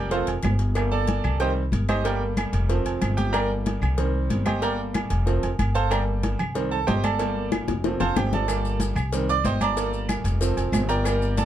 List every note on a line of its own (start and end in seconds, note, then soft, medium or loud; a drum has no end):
0.00 0.26 F1 loud
0.11 0.33 F3 medium
0.11 0.33 A3 medium
0.11 0.33 C4 medium
0.11 0.27 F4 medium
0.11 0.27 A4 medium
0.11 0.27 C5 medium
0.11 0.27 F5 medium
0.11 cowbell loud
0.11 high conga soft
0.27 0.42 F1 medium
0.27 cowbell medium
0.27 high conga soft
0.27 low agogo loud
0.43 1.18 G1 medium
0.43 cowbell medium
0.43 high conga medium
0.43 low timbale medium
0.43 low agogo loud
0.43 claves medium
0.59 cowbell medium
0.75 1.37 G3 medium
0.75 1.37 A3 medium
0.75 1.37 A#3 medium
0.75 cowbell loud
0.75 high conga soft
0.75 low agogo loud
0.75 claves medium
0.92 1.37 A4 medium
0.92 1.37 D5 medium
0.92 1.37 A5 loud
0.92 high conga soft
1.07 cowbell medium
1.07 high conga loud
1.07 low agogo medium
1.24 1.69 C2 loud
1.24 high conga soft
1.24 low conga medium
1.24 low agogo loud
1.24 claves medium
1.40 1.62 D#3 medium
1.40 1.62 G3 medium
1.40 1.62 C4 medium
1.40 1.50 G4 medium
1.40 1.51 C5 medium
1.40 1.51 D#5 medium
1.40 1.50 G5 medium
1.40 cowbell loud
1.40 high conga soft
1.56 high conga soft
1.72 2.47 G1 medium
1.72 cowbell medium
1.72 high conga medium
1.72 low agogo medium
1.89 2.05 D#4 medium
1.89 2.04 G4 medium
1.89 2.05 C5 medium
1.89 2.04 D#5 medium
1.89 cowbell medium
1.89 high conga medium
1.89 low agogo loud
1.89 claves medium
2.04 2.66 G3 medium
2.04 2.66 A3 medium
2.04 2.67 A#3 medium
2.04 2.21 G4 medium
2.04 2.21 A#4 medium
2.04 2.21 D5 medium
2.04 2.21 G5 medium
2.04 cowbell loud
2.04 high conga soft
2.04 low agogo medium
2.21 high conga soft
2.37 cowbell medium
2.37 high conga loud
2.37 low agogo loud
2.37 claves medium
2.53 2.83 F1 medium
2.53 cowbell medium
2.53 high conga soft
2.53 low agogo medium
2.69 3.30 F3 medium
2.69 3.30 A3 medium
2.69 3.31 C4 medium
2.69 cowbell loud
2.69 high conga soft
2.85 3.00 F1 medium
2.85 cowbell medium
2.85 high conga soft
2.85 low agogo medium
3.01 3.76 G1 medium
3.01 cowbell medium
3.01 high conga medium
3.01 low agogo loud
3.01 claves medium
3.17 3.33 G4 medium
3.17 3.31 G5 medium
3.17 cowbell medium
3.17 high conga medium
3.32 3.94 G3 medium
3.32 3.94 A3 medium
3.32 3.95 A#3 medium
3.32 3.49 A#4 medium
3.32 3.49 D5 medium
3.32 3.49 G5 medium
3.32 3.49 A#5 medium
3.32 cowbell loud
3.32 high conga soft
3.32 low agogo loud
3.32 claves medium
3.51 high conga soft
3.66 cowbell medium
3.66 high conga loud
3.66 low agogo medium
3.81 4.27 C2 medium
3.81 high conga soft
3.81 low conga medium
3.81 low agogo loud
3.81 claves medium
3.97 4.44 D#3 medium
3.97 4.44 G3 medium
3.97 4.44 C4 medium
3.97 cowbell loud
3.97 high conga soft
3.97 low conga medium
4.15 high conga soft
4.30 5.05 G1 medium
4.30 cowbell medium
4.30 high conga medium
4.30 low agogo medium
4.46 4.62 G4 medium
4.46 4.62 C5 medium
4.46 4.62 D#5 medium
4.46 4.61 G5 medium
4.46 cowbell medium
4.46 high conga medium
4.46 low agogo loud
4.46 claves medium
4.62 5.23 G3 medium
4.62 5.24 A3 medium
4.62 5.24 A#3 medium
4.62 4.78 A#4 medium
4.62 4.78 D5 medium
4.62 4.78 G5 medium
4.62 4.78 A#5 medium
4.62 cowbell loud
4.62 high conga soft
4.62 low agogo medium
4.79 high conga soft
4.94 cowbell medium
4.94 high conga loud
4.94 low agogo loud
4.94 claves medium
5.10 5.41 F1 loud
5.10 cowbell medium
5.10 high conga soft
5.10 low agogo medium
5.26 5.48 F3 medium
5.26 5.48 A3 medium
5.26 5.49 C4 medium
5.26 cowbell loud
5.26 high conga soft
5.43 5.58 F1 medium
5.43 cowbell medium
5.43 high conga soft
5.43 low agogo medium
5.59 6.34 G1 medium
5.59 cowbell medium
5.59 high conga medium
5.59 low agogo loud
5.59 claves medium
5.75 5.91 A4 medium
5.75 5.91 C5 medium
5.75 5.91 F5 medium
5.75 5.91 A5 medium
5.75 cowbell medium
5.90 6.37 G3 medium
5.90 6.37 A3 medium
5.90 6.37 A#3 medium
5.90 6.01 A#4 medium
5.90 6.01 D5 medium
5.90 6.01 G5 medium
5.90 6.01 A#5 medium
5.90 cowbell loud
5.90 high conga soft
5.90 low agogo loud
5.90 claves medium
6.08 high conga soft
6.23 cowbell medium
6.23 high conga loud
6.23 low agogo medium
6.39 6.84 C2 medium
6.39 high conga soft
6.39 low conga medium
6.39 low agogo loud
6.39 claves medium
6.55 6.76 D#3 medium
6.55 6.77 G3 medium
6.55 6.77 C4 medium
6.55 cowbell loud
6.55 high conga soft
6.71 6.87 A4 medium
6.71 6.87 A5 loud
6.71 high conga soft
6.87 7.62 G1 loud
6.87 7.03 G4 medium
6.87 7.03 C5 medium
6.87 7.03 D#5 medium
6.87 7.03 G5 medium
6.87 cowbell medium
6.87 high conga medium
6.87 low timbale medium
6.87 low agogo medium
7.04 7.49 A4 medium
7.04 7.49 D5 medium
7.04 7.49 A5 medium
7.04 cowbell medium
7.04 high conga medium
7.04 low agogo loud
7.04 claves medium
7.19 7.65 G3 medium
7.19 7.65 A3 medium
7.19 7.66 A#3 medium
7.19 cowbell loud
7.19 high conga soft
7.19 low agogo medium
7.37 high conga soft
7.52 cowbell medium
7.52 high bongo medium
7.52 high conga loud
7.52 low agogo loud
7.52 claves medium
7.68 7.98 F1 loud
7.68 cowbell medium
7.68 high bongo loud
7.68 high conga soft
7.68 low agogo medium
7.84 8.45 F3 medium
7.84 8.45 A3 medium
7.84 8.46 C4 medium
7.84 cowbell loud
7.84 high bongo loud
7.84 high conga soft
8.00 8.15 F1 medium
8.00 8.16 A4 medium
8.00 8.16 C5 medium
8.00 8.16 F5 medium
8.00 8.16 A5 loud
8.00 cowbell medium
8.00 low bongo loud
8.00 high conga soft
8.00 low agogo medium
8.16 8.91 G1 loud
8.16 8.32 G4 medium
8.16 8.32 G5 loud
8.16 cowbell medium
8.16 low bongo medium
8.16 high conga medium
8.16 low timbale medium
8.16 low agogo loud
8.16 claves medium
8.32 8.78 A4 medium
8.32 8.78 D5 medium
8.32 8.78 A5 medium
8.32 cowbell medium
8.32 low bongo medium
8.32 high conga medium
8.48 8.94 G3 medium
8.48 8.95 A3 medium
8.48 8.95 A#3 medium
8.48 cowbell loud
8.48 high conga soft
8.48 low agogo loud
8.48 claves medium
8.48 maracas medium
8.65 high conga soft
8.65 maracas soft
8.80 cowbell medium
8.80 high conga loud
8.80 low agogo medium
8.80 maracas medium
8.95 9.41 C2 loud
8.95 high conga soft
8.95 low conga medium
8.95 low agogo loud
8.95 claves medium
8.95 maracas soft
9.13 9.34 D#3 medium
9.13 9.34 G3 medium
9.13 9.35 C4 medium
9.13 cowbell loud
9.13 high conga soft
9.13 maracas medium
9.29 9.45 D5 loud
9.29 9.45 D6 loud
9.29 high conga soft
9.29 maracas soft
9.44 10.19 G1 loud
9.44 9.61 C5 medium
9.44 9.61 D#5 medium
9.44 9.61 G5 medium
9.44 9.61 C6 medium
9.44 cowbell medium
9.44 high conga medium
9.44 low agogo medium
9.44 maracas medium
9.61 10.06 D5 medium
9.61 10.06 A5 medium
9.61 10.06 A#5 medium
9.61 10.06 D6 loud
9.61 cowbell medium
9.61 high conga medium
9.61 low agogo loud
9.61 claves medium
9.61 maracas soft
9.77 10.38 G3 medium
9.77 10.38 A3 medium
9.77 10.38 A#3 medium
9.77 cowbell loud
9.77 high conga soft
9.77 low agogo medium
9.77 maracas medium
9.93 high conga soft
9.93 maracas soft
10.09 cowbell medium
10.09 high conga loud
10.09 low agogo loud
10.09 claves medium
10.09 maracas medium
10.24 10.54 F1 loud
10.24 cowbell medium
10.24 high conga soft
10.24 low agogo medium
10.24 maracas soft
10.41 10.87 F3 medium
10.41 10.87 A3 medium
10.41 10.87 C4 medium
10.41 cowbell loud
10.41 high conga soft
10.41 maracas medium
10.57 10.72 F1 medium
10.57 cowbell medium
10.57 high conga soft
10.57 low agogo loud
10.57 maracas soft
10.72 11.45 G1 loud
10.72 cowbell medium
10.72 high conga loud
10.72 low timbale medium
10.72 low agogo loud
10.72 claves medium
10.72 maracas medium
10.89 11.34 A#4 medium
10.89 11.34 D5 medium
10.89 11.34 G5 medium
10.89 11.34 A#5 loud
10.89 cowbell medium
10.89 maracas soft
11.04 11.45 G3 medium
11.04 11.45 A#3 medium
11.04 cowbell loud
11.04 high conga soft
11.04 low agogo loud
11.04 claves medium
11.04 maracas medium
11.22 high conga soft
11.22 maracas soft
11.37 11.45 A4 medium
11.37 11.45 D5 medium
11.37 11.45 A5 medium
11.37 cowbell medium
11.37 high conga loud
11.37 low agogo medium
11.37 maracas medium